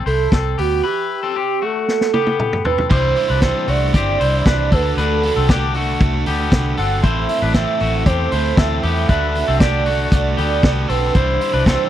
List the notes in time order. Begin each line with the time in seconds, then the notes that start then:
0.06 C2 E4 A4 C5, open hi-hat
0.32 C2 C4 A4, kick, snare, closed hi-hat
0.58 D2 B3 F#4 G4, open hi-hat
0.84 E4 G4 B4
1.23 C4 A4
1.36 C4 G4
1.62 A3 F#4 A4
1.88 snare
2.01 snare
2.14 B3 G4, high tom
2.27 high tom
2.39 mid tom
2.53 mid tom
2.65 C4 A4 B4, floor tom
2.78 floor tom
2.90 C2 C3 E3 G3 D4 E4 C5, kick, crash
3.16 D4 E4 C5, open hi-hat
3.20 G3
3.30 C2 D4 B4
3.42 C3 E3 G3 C4 D4 E4 A4 C5, kick, snare, closed hi-hat
3.68 C2 G3 A3 D4 E4 F#4 C5 D5, open hi-hat
3.94 G1 G3 C4 D4 E4 G4 C5, kick, closed hi-hat
4.20 C2 D4 E4 C5, open hi-hat
4.24 G3
4.46 C2 C3 E3 G3 D4 E4 B4 C5, kick, snare, closed hi-hat
4.72 D2 D4 F#4 A4 B4, kick, open hi-hat
4.97 D2 D3 A3 D4 F#4 A4 B4, closed hi-hat
5.23 F#4 A4, open hi-hat
5.28 D4
5.36 C2 C4 A4
5.49 D3 A3 D4 F#4 G4 A4, kick, snare, closed hi-hat
5.74 A3 F#4 A4, open hi-hat
5.79 D4
6.00 C2 A3 D4 F#4 A4, kick, closed hi-hat
6.26 D2 B3 F#4 G4 A4, open hi-hat
6.30 D4
6.52 C2 D3 A3 D4 F#4 A4, kick, snare, closed hi-hat
6.77 G1 C4 D4 F#4 A4 F#5, open hi-hat
7.03 A1 A2 E3 A3 C4 E4 A4 C5 E5, kick, closed hi-hat
7.29 A3 C4 E4 A4, open hi-hat
7.42 A1 D4 B4
7.54 A2 E3 A3 C4 E4 A4 E5, kick, snare, closed hi-hat
7.80 A1 A3 E4 F#4 A4, open hi-hat
7.84 A3 C4
8.06 E2 A3 C4 G4 C5, kick, closed hi-hat
8.10 E4 A4
8.32 D2 C4 E4 A4 C5, open hi-hat
8.37 A3
8.57 D2 A2 E3 A3 C4 E4 A4 E5, kick, snare, closed hi-hat
8.61 A4
8.83 E2 A3 B3 C4 E4 G4 A4, open hi-hat
9.08 D2 D3 A3 D4 B4 E5, kick, closed hi-hat
9.12 F#4 A4
9.35 F#4 A4, open hi-hat
9.39 D4
9.48 C2 C4 A4
9.60 D3 A3 D4 G4 D5, kick, snare, closed hi-hat
9.64 F#4 A4
9.86 A3 F#4 A4, open hi-hat
9.91 D4 F#4
10.11 C2 A3 D4 F#4 D5, kick, closed hi-hat
10.17 A4
10.37 D2 B3 F#4 G4 A4, open hi-hat
10.42 D4
10.63 C2 D3 A3 D4 F#4 A4, kick, snare, closed hi-hat
10.89 B1 C4 F#4 A4 B4, open hi-hat
10.93 D4
11.15 C2 C3 E3 G3 D4 E4 C5, kick, closed hi-hat
11.41 G3 D4 E4 C5, open hi-hat
11.53 C2 D4 B4
11.66 C3 E3 G3 C4 D4 E4 A4 C5, kick, snare, closed hi-hat